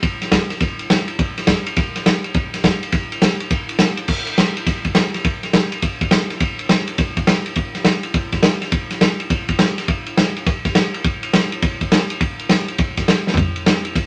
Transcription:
0.03 kick, ride
0.22 snare, ride
0.32 kick, snare, ride
0.50 snare, ride
0.60 kick, snare, ride
0.79 ride
0.90 snare, ride
1.08 ride
1.19 kick, ride
1.38 snare, ride
1.47 kick, snare, ride
1.66 ride
1.76 kick, snare, ride
1.96 snare, ride
2.06 snare, ride
2.24 ride
2.34 kick, ride
2.54 snare, ride
2.64 kick, snare, ride
2.83 ride
2.92 kick, snare, ride
3.12 ride
3.22 snare, ride
3.40 ride
3.51 kick, ride
3.69 ride
3.79 snare, ride
3.97 ride
4.08 kick, crash
4.27 ride
4.38 snare, ride
4.57 ride
4.67 kick, snare, ride
4.85 kick, ride
4.95 snare, ride
5.14 snare, ride
5.25 kick, ride
5.43 snare, ride
5.53 snare, ride
5.72 ride
5.82 kick, ride
6.01 kick, ride
6.11 snare, ride
6.30 snare, ride
6.40 kick, ride
6.59 ride
6.69 snare, ride
6.88 ride
6.98 kick, snare, ride
7.17 kick, ride
7.27 snare, ride
7.46 ride
7.56 kick, ride
7.75 snare, ride
7.84 snare, ride
8.03 ride
8.14 kick, ride
8.32 kick, snare, ride
8.43 snare, ride
8.62 snare, ride
8.72 kick, ride
8.91 snare, ride
9.01 snare, ride
9.20 ride
9.30 kick, ride
9.49 kick, ride
9.59 snare, ride
9.78 snare, ride
9.88 kick, ride
10.06 ride
10.17 snare, ride
10.37 ride
10.46 kick, snare, ride
10.65 kick, snare, ride
10.75 snare, ride
10.94 ride
11.04 kick, ride
11.23 ride
11.33 snare, ride
11.52 ride
11.62 kick, ride
11.81 kick, ride
11.92 snare, ride
12.10 ride
12.21 kick, ride
12.39 ride
12.49 snare, ride
12.68 ride
12.78 kick, ride
12.97 kick, snare, ride
13.08 snare, ride
13.27 snare
13.34 kick, floor tom, ride
13.56 ride
13.66 snare, ride
13.85 ride
13.95 kick, ride

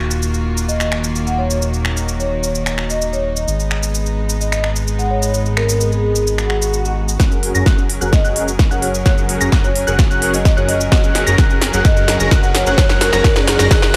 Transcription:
Already playing: D#1 D#3 A#3 F4 F#4
0.11 shaker
0.22 shaker
0.34 shaker
0.57 shaker
0.68 D#5, shaker
0.80 D#5, finger snap, shaker
0.92 finger snap
1.04 shaker
1.15 shaker
1.27 F#5, shaker
1.38 C#5
1.50 C#5, shaker
1.61 D#4, shaker
1.74 shaker
1.85 finger snap
1.97 shaker
2.08 shaker
2.20 C#5, shaker
2.31 C#5
2.43 shaker
2.55 shaker
2.66 finger snap, shaker
2.78 finger snap
2.90 D#5, shaker
3.02 shaker
3.13 C#5, shaker
3.24 D#5
3.36 shaker
3.47 G#1 G#3 B3, shaker
3.60 shaker
3.71 finger snap
3.83 shaker
3.95 shaker
4.06 shaker
4.29 shaker
4.41 D#5, shaker
4.52 D#5, finger snap, shaker
4.64 finger snap
4.76 shaker
4.88 shaker
4.99 F#5, shaker
5.11 C#5
5.22 C#5, shaker
5.34 shaker
5.46 shaker
5.57 A#4, finger snap
5.69 shaker
5.81 shaker
5.92 G#4, shaker
6.03 G#4
6.15 shaker
6.27 swell, shaker
6.38 finger snap, shaker
6.50 finger snap
6.62 shaker
6.74 shaker
6.85 shaker
7.08 shaker
7.19 F#1 F#3 C#4 F#4 G#4 A#4 F#5 F#6, kick, snare, riser, shaker
7.32 shaker
7.43 open hi-hat
7.55 F#1 C#4 F#4 G#4 A#4 A#5 A#6, shaker
7.66 F#1 C#4 F#4 G#4 A#4 F#5 F#6, kick, snare, shaker
7.78 shaker
7.90 open hi-hat
8.01 F#1 C#4 F#4 G#4 A#4 F#5 F#6, shaker
8.13 D#5, kick, snare, shaker
8.24 F#1 C#4 F#4 G#4 A#4 D#5 F#5 F#6, shaker
8.36 open hi-hat
8.48 shaker
8.59 kick, snare, shaker
8.71 F#1 C#4 F#4 G#4 A#4 F#5 F#6, shaker
8.82 C#5, open hi-hat
8.94 C#5, shaker
9.06 F#1 C#4 F#4 G#4 A#4 F#5 F#6, kick, snare, shaker
9.18 shaker
9.29 open hi-hat
9.41 F#1 C#4 F#4 G#4 A#4 A#5 A#6, shaker
9.52 F#1 C#4 F#4 G#4 A#4 F#5 F#6, kick, snare, shaker
9.64 C#5, shaker
9.75 C#5, open hi-hat
9.87 F#1 C#4 F#4 G#4 A#4 F#5 F#6, shaker
9.99 kick, snare, shaker
10.10 F#1 C#4 F#4 G#4 A#4 F#5 F#6, shaker
10.22 open hi-hat
10.34 D#5, open hi-hat, shaker
10.45 kick, snare, shaker
10.57 F#1 C#4 F#4 G#4 A#4 C#5 F#5 F#6, shaker
10.69 D#5, open hi-hat
10.81 shaker
10.92 F#1 C#4 F#4 G#4 A#4 F#5 F#6, kick, snare, shaker
11.04 shaker
11.15 snare, open hi-hat
11.27 F#1 C#4 F#4 G#4 A#4 A#5 A#6, shaker
11.38 F#1 C#4 F#4 G#4 A#4 F#5 F#6, kick, snare, shaker
11.50 shaker
11.62 snare, open hi-hat
11.73 F#1 C#4 F#4 G#4 A#4 F#5 F#6, shaker
11.85 F#1 C#4 F#4 G#4 A#4 D#5 F#5 F#6, kick, snare, shaker
11.96 D#5, shaker
12.08 snare, open hi-hat
12.20 F#1 C#4 F#4 G#4 A#4 A#5 A#6, shaker
12.31 F#1 C#4 F#4 G#4 A#4 F#5 F#6, kick, snare, shaker
12.43 F#5, shaker
12.55 C#5, snare, open hi-hat
12.66 F#1 C#4 F#4 G#4 A#4 C#5 F#5 F#6, shaker
12.78 F#1 C#4 F#4 G#4 A#4 F#5 F#6, kick, snare, shaker
12.89 snare, shaker
13.01 A#4, snare, open hi-hat
13.13 F#1 C#4 F#4 G#4 A#4 A#5 A#6, snare, shaker
13.24 F#1 C#4 F#4 G#4 A#4 F#5 F#6, kick, snare, shaker
13.36 G#4, snare, shaker
13.47 G#4, snare, open hi-hat
13.59 F#1 C#4 F#4 G#4 A#4 A#5 A#6, snare, shaker
13.71 F#1 C#4 F#4 G#4 A#4 F#5 F#6, kick, snare, shaker
13.82 snare, shaker

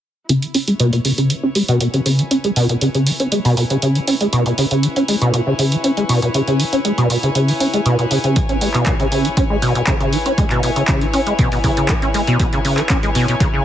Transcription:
0.29 C#3 E4, closed hi-hat
0.42 E3, closed hi-hat
0.54 C#4, open hi-hat
0.59 B4
0.68 G#3 C#5, closed hi-hat
0.80 B2, closed hi-hat
0.93 B2, closed hi-hat
1.05 C#3, open hi-hat
1.18 C#3, closed hi-hat
1.30 E3, closed hi-hat
1.43 C#4
1.55 G#3, open hi-hat
1.68 B2, closed hi-hat
1.81 B2, closed hi-hat
1.89 G#5
1.94 C#3, closed hi-hat
2.06 C#3, open hi-hat
2.19 E3, closed hi-hat
2.31 C#4, closed hi-hat
2.44 G#3, closed hi-hat
2.56 B2, open hi-hat
2.69 B2, closed hi-hat
2.81 C#3, closed hi-hat
2.95 C#3, closed hi-hat
3.07 E3, open hi-hat
3.20 C#4, closed hi-hat
3.32 G#3, closed hi-hat
3.45 B2, open hi-hat
3.57 B2, open hi-hat
3.70 C#3, closed hi-hat
3.82 C#3, closed hi-hat
3.95 E3, closed hi-hat
4.08 C#4, open hi-hat
4.21 G#3, closed hi-hat
4.33 B2, closed hi-hat
4.46 B2, closed hi-hat
4.58 C#3, open hi-hat
4.71 C#3, closed hi-hat
4.83 E3, closed hi-hat
4.96 C#4, closed hi-hat
5.08 G#3, open hi-hat
5.21 B2, closed hi-hat
5.34 B2, closed hi-hat
5.47 C#3
5.59 C#3, open hi-hat
5.72 E3, closed hi-hat
5.84 C#4, closed hi-hat
5.97 G#3, closed hi-hat
6.09 B2, open hi-hat
6.22 B2, closed hi-hat
6.34 C#3, closed hi-hat
6.47 C#3, closed hi-hat
6.59 E3, open hi-hat
6.73 C#4, closed hi-hat
6.85 G#3, closed hi-hat
6.98 B2, closed hi-hat
7.10 B2, open hi-hat
7.23 C#3, closed hi-hat
7.35 C#3, closed hi-hat
7.48 E3, open hi-hat
7.60 C#4, open hi-hat
7.74 G#3, closed hi-hat
7.86 B2, closed hi-hat
7.99 B2, closed hi-hat
8.11 C#3, open hi-hat
8.24 C#3, closed hi-hat
8.36 E3, kick, closed hi-hat
8.49 C#4, closed hi-hat
8.61 G#3, open hi-hat
8.74 B2, clap, closed hi-hat
8.86 B2, kick, clap, closed hi-hat
9.00 C#3, closed hi-hat
9.12 C#3, open hi-hat
9.25 E3, closed hi-hat
9.37 C#4, kick, closed hi-hat
9.50 G#3
9.62 B2, open hi-hat
9.75 B2, closed hi-hat
9.87 C#3, kick, clap, closed hi-hat
10.00 C#3, closed hi-hat
10.13 E3, open hi-hat
10.26 C#4, closed hi-hat
10.38 G#3, kick, closed hi-hat
10.51 B2, clap, closed hi-hat
10.63 B2, open hi-hat
10.76 C#3, closed hi-hat
10.88 C#3, kick, clap, closed hi-hat
11.01 E3, closed hi-hat
11.13 C#4, open hi-hat
11.27 G#3, closed hi-hat
11.39 B2, kick, closed hi-hat
11.52 B2, open hi-hat
11.64 C#3, kick, open hi-hat
11.77 C#3, closed hi-hat
11.89 E3, kick, clap, closed hi-hat
12.02 C#4, closed hi-hat
12.14 G#3, open hi-hat
12.27 B2, closed hi-hat
12.40 B2, kick, closed hi-hat
12.53 C#3, closed hi-hat
12.65 C#3, open hi-hat
12.77 E3, clap, closed hi-hat
12.89 C#4, kick, clap, closed hi-hat
13.03 G#3, closed hi-hat
13.15 B2, open hi-hat
13.28 B2, closed hi-hat
13.40 C#3, kick, closed hi-hat
13.53 C#3

